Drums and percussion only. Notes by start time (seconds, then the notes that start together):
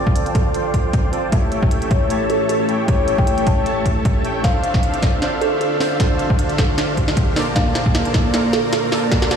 0.07 kick
0.16 closed hi-hat
0.26 closed hi-hat
0.35 kick, closed hi-hat
0.54 closed hi-hat
0.74 kick, closed hi-hat
0.93 kick, closed hi-hat
1.13 closed hi-hat
1.32 kick, closed hi-hat
1.52 closed hi-hat
1.63 kick
1.71 closed hi-hat
1.82 closed hi-hat
1.91 kick, closed hi-hat
2.10 closed hi-hat
2.30 closed hi-hat
2.49 closed hi-hat
2.69 closed hi-hat
2.88 kick, closed hi-hat
3.08 closed hi-hat
3.18 kick
3.27 closed hi-hat
3.38 closed hi-hat
3.47 kick, closed hi-hat
3.66 closed hi-hat
3.86 kick, closed hi-hat
4.05 kick, closed hi-hat
4.25 closed hi-hat
4.44 kick, snare, closed hi-hat
4.64 closed hi-hat
4.74 kick, snare
4.83 closed hi-hat
4.94 closed hi-hat
5.03 kick, snare, closed hi-hat
5.22 snare, closed hi-hat
5.41 closed hi-hat
5.61 closed hi-hat
5.80 snare, open hi-hat
6.00 kick, snare, closed hi-hat
6.19 closed hi-hat
6.30 kick
6.39 closed hi-hat
6.49 closed hi-hat
6.58 kick, snare, closed hi-hat
6.78 snare, closed hi-hat
6.97 kick, closed hi-hat
7.08 snare
7.17 kick, closed hi-hat
7.36 snare, open hi-hat
7.56 kick, snare, closed hi-hat
7.75 snare, closed hi-hat
7.86 kick
7.95 snare, closed hi-hat
8.05 closed hi-hat
8.14 kick, snare, closed hi-hat
8.34 snare, closed hi-hat
8.53 snare, closed hi-hat
8.73 snare, closed hi-hat
8.92 snare, open hi-hat
9.12 kick, snare, closed hi-hat
9.22 snare
9.31 snare, closed hi-hat